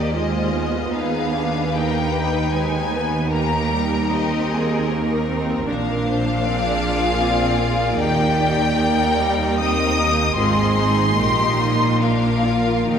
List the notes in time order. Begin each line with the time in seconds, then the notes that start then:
Already playing: D#2 A#3 D#4 G4 D5 D#5
0.13 G#3 F4 G#4 C5 D#5
0.53 B3
0.94 D#2 D#4 G#4 B4 F5
1.34 D4
1.72 A#3 D#4 A#4 G5
2.15 B4
2.53 G#3 B4 G#5
2.92 B3
3.31 A#3 D#4 G4 A#4 A#5
3.72 G3
4.11 C4 G4 D#5
4.51 G#4
4.90 A#3 A#4
5.27 C4
5.66 A#1 A#2 D4 A#4 F5
6.07 C5
6.45 C4 D4 G#4 D5
6.84 F4
7.22 C4 D5
7.60 A#3
7.98 D#2 D#4 G4 G5
8.76 A#3 A#4
9.18 G3
9.60 C4 D#4 A#4 D#5 D#6
9.99 A#3
10.36 G#1 G#2 C4 F4 G#4 D#5 C6
10.76 D#4
11.15 A#1 A#2 A#3 D#4 G4 D#5
11.59 F4
12.00 D4 F4 A#4 F5
12.44 F4
12.90 D#2 D#3 A#3 D#4 G4 A#4 F5